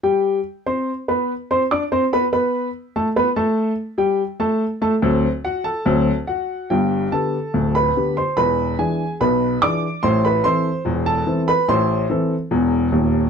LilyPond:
<<
  \new Staff \with { instrumentName = "Upright piano" } { \time 2/4 \key g \major \tempo 4 = 72 <g g' g''>8. <c' c'' c'''>8 <b b' b''>8 <c' c'' c'''>16 | <d' d'' d'''>16 <c' c'' c'''>16 <b b' b''>16 <b b' b''>8. <a a' a''>16 <b b' b''>16 | <a a' a''>8. <g g' g''>8 <a a' a''>8 <a a' a''>16 | r8 <fis' fis''>16 <a' a''>8. <fis' fis''>8 |
<g' g''>8 <a' a''>8. <b' b''>8 <c'' c'''>16 | <b' b''>8 <gis' gis''>8 <b' b''>8 <d'' d'''>8 | <c'' c'''>16 <b' b''>16 <c'' c'''>8. <a' a''>8 <b' b''>16 | <c'' c'''>8 r4. | }
  \new Staff \with { instrumentName = "Upright piano" } { \clef bass \time 2/4 \key g \major r2 | r2 | r2 | <d, fis c' a'>8 r8 <d, fis c' a'>8 r8 |
<g,, g,>8 <d b g'>8 <d,, d,>8 <d b g'>8 | <e,, e,>8 <e d'>8 <b,, b,>8 <e d' gis'>8 | <a,, a,>8 <e c' a'>8 <e,, e,>8 <e c' a'>8 | <a,, a,>8 <e c' a'>8 <e,, e,>8 <ees,, ees,>8 | }
>>